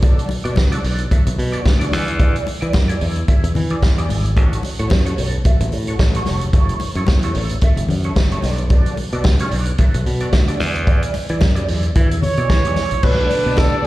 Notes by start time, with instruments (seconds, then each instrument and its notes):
Already playing: fingered electric bass B1
0.02 clean electric guitar F#4 A4 D5, kick, closed hi-hat, muted conga
0.19 closed hi-hat
0.29 muted clean electric guitar stroke, open hi-hat, muted conga
0.44 fingered electric bass B2, clean electric guitar F#4 A4 D5, closed hi-hat
0.56 fingered electric bass C#2, muted clean electric guitar stroke, kick, snare, high conga
0.72 clean electric guitar F#4 A4 D5, closed hi-hat
0.84 fingered electric bass B1, clean electric guitar F#4 A4 D5, open hi-hat
0.98 muted clean electric guitar stroke, closed hi-hat
1.11 clean electric guitar F#4 A4 E5, kick, closed hi-hat
1.26 fingered electric bass B1, muted clean electric guitar stroke, closed hi-hat
1.38 fingered electric bass B2, muted clean electric guitar stroke, open hi-hat
1.52 clean electric guitar F#4 A4 D5, closed hi-hat
1.65 fingered electric bass D2, muted clean electric guitar stroke, kick, snare, high conga
1.79 clean electric guitar F#4 A4 D5, closed hi-hat
1.92 fingered electric bass E2, clean electric guitar E4 G#4 D5, snare, open hi-hat, high conga
2.08 muted clean electric guitar stroke, closed hi-hat
2.19 clean electric guitar E4 G#4 D5, kick, closed hi-hat, muted conga
2.36 closed hi-hat
2.46 muted clean electric guitar stroke, open hi-hat, muted conga
2.61 fingered electric bass E3, clean electric guitar E4 G#4 D5, closed hi-hat
2.73 fingered electric bass F#2, muted clean electric guitar stroke, kick, snare, high conga
2.88 clean electric guitar E4 G#4 D5, closed hi-hat
3.01 fingered electric bass E2, clean electric guitar E4 G#4 D5, open hi-hat
3.16 muted clean electric guitar stroke, closed hi-hat
3.28 clean electric guitar E4 G#4 E5, kick, closed hi-hat
3.43 fingered electric bass E2, muted clean electric guitar stroke, closed hi-hat
3.55 fingered electric bass E3, muted clean electric guitar stroke, open hi-hat, muted conga, low conga
3.70 clean electric guitar E4 G#4 D5, closed hi-hat
3.82 fingered electric bass E2, muted clean electric guitar stroke, kick, snare, high conga
3.98 clean electric guitar E4 G#4 D5, closed hi-hat
4.09 fingered electric bass G#1, clean electric guitar E4 G#4 D5, open hi-hat, high conga
4.25 muted clean electric guitar stroke, closed hi-hat
4.37 fingered electric bass A1, clean electric guitar F#4 A4 C#5, kick, closed hi-hat, muted conga
4.53 closed hi-hat
4.63 muted clean electric guitar stroke, open hi-hat, muted conga
4.79 fingered electric bass A2, clean electric guitar F#4 A4 C#5, closed hi-hat
4.90 fingered electric bass F#2, muted clean electric guitar stroke, kick, snare, high conga
5.06 clean electric guitar F#4 A4 C#5, closed hi-hat
5.18 fingered electric bass B1, clean electric guitar F#4 A4 C#5, open hi-hat
5.32 muted clean electric guitar stroke, closed hi-hat
5.45 clean electric guitar F#4 A4 E5, kick, closed hi-hat
5.60 fingered electric bass A1, muted clean electric guitar stroke, closed hi-hat
5.72 fingered electric bass A2, muted clean electric guitar stroke, open hi-hat, muted conga
5.87 clean electric guitar F#4 A4 C#5, closed hi-hat
5.99 fingered electric bass A1, muted clean electric guitar stroke, kick, snare, high conga
6.14 clean electric guitar F#4 A4 C#5, closed hi-hat
6.26 fingered electric bass F1, clean electric guitar F#4 A4 C#5, snare, open hi-hat, high conga
6.41 muted clean electric guitar stroke, closed hi-hat
6.53 fingered electric bass F#1, clean electric guitar E4 A4 C#5, kick, closed hi-hat, muted conga
6.69 closed hi-hat
6.80 muted clean electric guitar stroke, open hi-hat, muted conga
6.95 fingered electric bass F#2, clean electric guitar E4 A4 C#5, closed hi-hat
7.07 fingered electric bass E2, muted clean electric guitar stroke, kick, snare, high conga
7.23 clean electric guitar E4 A4 C#5, closed hi-hat
7.35 fingered electric bass A1, clean electric guitar E4 A4 C#5, open hi-hat
7.49 muted clean electric guitar stroke, closed hi-hat
7.61 clean electric guitar E4 A4 E5, kick, closed hi-hat
7.77 fingered electric bass F#1, muted clean electric guitar stroke, closed hi-hat
7.89 fingered electric bass F#2, muted clean electric guitar stroke, open hi-hat, low conga
8.04 clean electric guitar E4 A4 C#5, closed hi-hat
8.16 fingered electric bass F#1, muted clean electric guitar stroke, kick, snare, high conga
8.31 clean electric guitar E4 A4 C#5, closed hi-hat
8.42 fingered electric bass B1, clean electric guitar F#4 A4 D5, snare, open hi-hat, high conga
8.58 muted clean electric guitar stroke, closed hi-hat
8.70 clean electric guitar F#4 A4 D5, kick, closed hi-hat, muted conga
8.86 closed hi-hat
8.97 muted clean electric guitar stroke, open hi-hat, muted conga
9.12 fingered electric bass B2, clean electric guitar F#4 A4 D5, closed hi-hat
9.24 fingered electric bass C#2, muted clean electric guitar stroke, kick, snare, high conga
9.39 clean electric guitar F#4 A4 D5, closed hi-hat
9.51 fingered electric bass B1, clean electric guitar F#4 A4 D5, open hi-hat
9.65 muted clean electric guitar stroke, closed hi-hat
9.78 clean electric guitar F#4 A4 E5, kick, closed hi-hat
9.94 fingered electric bass B1, muted clean electric guitar stroke, closed hi-hat
10.06 fingered electric bass B2, muted clean electric guitar stroke, open hi-hat
10.20 clean electric guitar F#4 A4 D5, closed hi-hat
10.33 fingered electric bass D2, muted clean electric guitar stroke, kick, snare, high conga
10.48 clean electric guitar F#4 A4 D5, closed hi-hat
10.59 fingered electric bass E2, clean electric guitar E4 G#4 D5, snare, open hi-hat, high conga
10.76 muted clean electric guitar stroke, closed hi-hat
10.87 clean electric guitar E4 G#4 D5, kick, closed hi-hat, muted conga
11.02 closed hi-hat
11.14 muted clean electric guitar stroke, open hi-hat, muted conga
11.29 fingered electric bass E3, clean electric guitar E4 G#4 D5, closed hi-hat
11.41 fingered electric bass F#2, muted clean electric guitar stroke, kick, snare, high conga
11.55 clean electric guitar E4 G#4 D5, closed hi-hat
11.68 fingered electric bass E2, clean electric guitar E4 G#4 D5, open hi-hat
11.83 muted clean electric guitar stroke, closed hi-hat
11.95 fingered electric bass E3, clean electric guitar E4 G#4 E5, kick, closed hi-hat
12.11 fingered electric bass E2, muted clean electric guitar stroke, closed hi-hat
12.22 flugelhorn C#5, muted clean electric guitar stroke, open hi-hat, low conga
12.37 fingered electric bass B2, clean electric guitar E4 G#4 D5, closed hi-hat
12.50 fingered electric bass E3, kick, snare, high conga
12.65 fingered electric bass E2, clean electric guitar E4 G#4 D5, closed hi-hat
12.76 clean electric guitar E4 G#4 D5, snare, open hi-hat, high conga
12.91 fingered electric bass A#1, muted clean electric guitar stroke, closed hi-hat
13.03 fingered electric bass B1, tonewheel organ D3 A3 B3, string section D4 D5, clean electric guitar F#4 A4 D5, flugelhorn B4, kick, crash, muted conga
13.30 muted clean electric guitar stroke, open hi-hat, muted conga
13.46 fingered electric bass B2, clean electric guitar F#4 A4 D5
13.57 flugelhorn A4, muted clean electric guitar stroke, kick, snare, closed hi-hat, high conga
13.75 clean electric guitar F#4 A4 D5